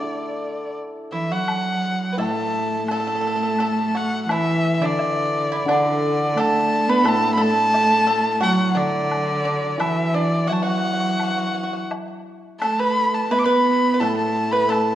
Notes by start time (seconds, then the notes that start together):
Already playing: D3 A3 D4 E4 D5
0.03 A4
1.12 E3 E4 E5
1.30 F#3 F#4 F#5
1.48 high woodblock
2.12 B4
2.17 A2 A3 A4 A5, low woodblock
2.88 A3 A4 A5, high woodblock
3.00 A4
3.07 A4
3.15 A4
3.21 A4
3.27 A4
3.36 A4
3.43 A4
3.58 A4, high woodblock
3.95 F#4 F#5
4.22 F#5
4.29 E3 E4 E5, high woodblock
4.74 E5
4.80 D3 D4
4.85 D5
4.99 low woodblock
5.52 E4
5.66 D3 D4, high woodblock
5.70 D5
6.35 A3 A4, high woodblock
6.40 A5
6.88 B3 B4 B5
7.04 A2 A3 A4, high woodblock
7.08 A5
7.35 A3 A4 B5
7.42 A5
7.74 low woodblock
8.07 A4
8.41 F#3 F#4 F#5, high woodblock
8.75 D3 D4 D5
9.12 high woodblock
9.45 D4
9.78 E3 E4 E5, high woodblock
10.14 D4 D5
10.47 F#3 F#4 F#5, low woodblock
10.53 A5
10.63 F#3 F#4 F#5
10.70 F#4
10.78 F#4
10.85 F#4
10.93 F#4
11.00 F#4
11.09 F#4
11.17 F#4, high woodblock
11.23 F#4
11.31 F#4
11.38 F#4
11.47 F#4
11.55 F#4
11.63 F#4
11.73 F#4
11.91 high woodblock, low woodblock
12.60 A3 A4 A5, high woodblock
12.79 B4 B5
13.14 A5
13.30 B3 B4 B5, low woodblock
13.38 D6
13.44 B3 B4 B5
13.94 B4
14.00 A2 A3 A4 A5, high woodblock
14.17 A5
14.51 B4 B5
14.69 A3 A4 A5, high woodblock